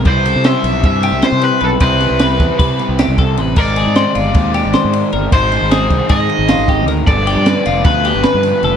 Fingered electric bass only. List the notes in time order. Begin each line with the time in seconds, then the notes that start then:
0.06 C2
0.36 C3
0.64 B1
0.84 G2
1.12 C2
1.32 C3
1.62 B1
1.81 C2
2.10 C2
2.40 E2
2.60 C3
2.89 C2
3.08 C2
3.37 A1
3.57 G#1
3.87 G#2
4.16 G1
4.35 D#2
4.65 G#1
4.85 G#2
5.14 G1
5.33 G#1
5.62 G#1
5.91 C2
6.10 G#2
6.39 G#1
6.58 G#1
6.87 D2
7.07 G1
7.36 G2
7.67 F1
7.85 D2
8.15 G1
8.34 G2
8.63 F1